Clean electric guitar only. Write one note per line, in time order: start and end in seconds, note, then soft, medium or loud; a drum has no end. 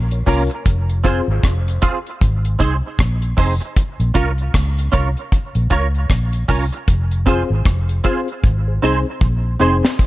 0.26 0.41 A#3 medium
0.26 0.41 C#4 medium
0.26 0.42 F4 medium
0.26 0.42 A#4 medium
0.50 muted clean electric guitar stroke soft
1.04 1.19 C4 medium
1.04 1.19 F4 medium
1.04 1.19 G#4 medium
1.04 1.20 C5 medium
1.82 1.97 C4 medium
1.82 1.97 F4 medium
1.82 1.97 G#4 medium
1.82 1.97 C5 medium
2.59 2.74 C4 medium
2.59 2.74 D#4 medium
2.59 2.75 G#4 medium
2.59 2.75 C5 medium
3.37 3.52 C4 medium
3.37 3.52 D#4 medium
3.37 3.53 G#4 medium
3.37 3.53 C5 medium
3.61 muted clean electric guitar stroke soft
4.14 4.30 C#4 medium
4.14 4.30 F4 medium
4.14 4.30 A#4 medium
4.14 4.30 C#5 medium
4.92 5.07 C#4 medium
4.92 5.08 F4 medium
4.92 5.08 A#4 medium
4.92 5.08 C#5 medium
5.70 5.85 C#4 medium
5.70 5.86 F4 medium
5.70 5.86 A#4 medium
5.70 5.86 C#5 loud
6.48 6.63 C#4 medium
6.48 6.63 F4 medium
6.48 6.64 A#4 medium
6.48 6.64 C#5 medium
6.72 muted clean electric guitar stroke soft
7.26 7.41 C4 medium
7.26 7.41 F4 medium
7.26 7.42 G#4 medium
7.26 7.42 C5 medium
8.04 8.19 C4 medium
8.04 8.19 F4 medium
8.04 8.19 G#4 medium
8.04 8.20 C5 medium
8.82 8.97 C4 medium
8.82 8.97 D#4 medium
8.82 8.98 G#4 medium
8.82 8.98 C5 medium
9.60 9.75 C4 medium
9.60 9.75 D#4 medium
9.60 9.75 G#4 medium
9.60 9.75 C5 medium
9.83 muted clean electric guitar stroke soft